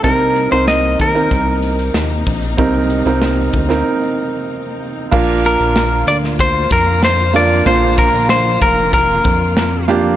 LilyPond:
<<
  \new Staff \with { instrumentName = "Clean electric guitar" } { \time 4/4 \key bes \major \tempo 4 = 94 bes'8. c''16 ees''8 bes'2~ bes'8~ | bes'2. r4 | r8 bes'4 d''8 c''8 bes'8 c''8 d''8 | c''8 bes'8 c''8 bes'8 bes'4. r8 | }
  \new Staff \with { instrumentName = "Grand piano" } { \time 4/4 \key bes \major <c' ees' bes'>8 r16 <c' ees' bes'>8. r16 <c' ees' bes'>4.~ <c' ees' bes'>16 r8 | <c' ees' bes'>8 r16 <c' ees' bes'>8. r16 <c' ees' bes'>4.~ <c' ees' bes'>16 r8 | <bes d' f' bes'>4.~ <bes d' f' bes'>16 r4. r16 <bes d' f' bes'>8 | <bes d' f' c''>4.~ <bes d' f' c''>16 r4. r16 <bes d' f' g'>8 | }
  \new Staff \with { instrumentName = "Grand piano" } { \clef bass \time 4/4 \key bes \major c4. r2 r8 | c4. r2 r8 | bes,4. r2 r8 | bes,4. r2 r8 | }
  \new Staff \with { instrumentName = "String section" } { \time 4/4 \key bes \major <c bes ees'>1~ | <c bes ees'>1 | <d bes f'>1~ | <d bes f'>1 | }
  \new Staff \with { instrumentName = "Analog synth bass" } { \clef bass \time 4/4 \key bes \major c,8. c,8. ees,8 c,4 ees,8 bes,,8 | c,8. c,8. d,8 r2 | bes,,8. bes,,8. d,4 f,4. | bes,,8. bes,,8. f,,4 f,4. | }
  \new DrumStaff \with { instrumentName = "Drums" } \drummode { \time 4/4 <hh bd>16 hh16 hh16 hh16 <hh sn>8 <hh bd>16 hh16 <hh bd>8 hh16 hh16 <hh sn>8 <hho bd>16 hh16 | <hh bd>16 hh16 hh16 hh16 <hh sn>8 <hh bd>16 <hh sn>16 r4 r4 | <cymc bd>8 hh8 <hh sn>8 hh16 sn16 <hh bd>8 <hh bd>8 <hh sn>8 hh8 | <hh bd>8 <hh bd>8 <hh sn>8 <hh bd>8 <hh bd>8 <hh bd>8 <hh sn>8 hh8 | }
>>